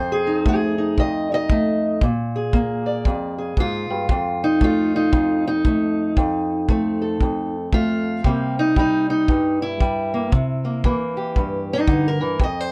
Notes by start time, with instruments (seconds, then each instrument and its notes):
Already playing: steel-string acoustic guitar F2 C5
0.12 steel-string acoustic guitar G#4
0.27 steel-string acoustic guitar D#4
0.46 steel-string acoustic guitar A3 G#4, kick
0.78 steel-string acoustic guitar D#4
0.98 steel-string acoustic guitar F2 D#5, kick
1.32 steel-string acoustic guitar D#4 D#5
1.50 steel-string acoustic guitar A3, kick
2.01 steel-string acoustic guitar A#2, kick
2.36 steel-string acoustic guitar G#4
2.53 steel-string acoustic guitar A#3, kick
2.86 steel-string acoustic guitar D5
3.05 steel-string acoustic guitar F2, kick
3.38 steel-string acoustic guitar G#4
3.57 steel-string acoustic guitar G#2 F4, kick
3.90 steel-string acoustic guitar G2
4.09 steel-string acoustic guitar F2, kick
4.44 steel-string acoustic guitar D#4
4.61 steel-string acoustic guitar A3 F4, kick
4.96 steel-string acoustic guitar D#4
5.12 steel-string acoustic guitar F2, kick
5.48 steel-string acoustic guitar D#4
5.65 steel-string acoustic guitar A3, kick
6.17 steel-string acoustic guitar F2, kick
6.69 steel-string acoustic guitar A3 C4, kick
7.02 steel-string acoustic guitar A4
7.21 steel-string acoustic guitar F2, kick
7.73 steel-string acoustic guitar A3 F4, kick
8.24 steel-string acoustic guitar C3 G3 A#3 C4, kick
8.59 steel-string acoustic guitar D#4
8.76 steel-string acoustic guitar G3 D#4, kick
9.10 steel-string acoustic guitar D#4
9.28 steel-string acoustic guitar G2, kick
9.62 steel-string acoustic guitar E4
9.80 steel-string acoustic guitar G3, kick
10.14 steel-string acoustic guitar A#3
10.32 steel-string acoustic guitar C3, kick
10.65 steel-string acoustic guitar A#3
10.84 steel-string acoustic guitar E3 A#3, kick
11.17 steel-string acoustic guitar G4
11.36 steel-string acoustic guitar G2, kick
11.73 steel-string acoustic guitar D#4
11.87 steel-string acoustic guitar D3, kick
12.08 steel-string acoustic guitar A#4
12.21 steel-string acoustic guitar E3
12.40 steel-string acoustic guitar F2 D#5, kick
12.60 steel-string acoustic guitar C5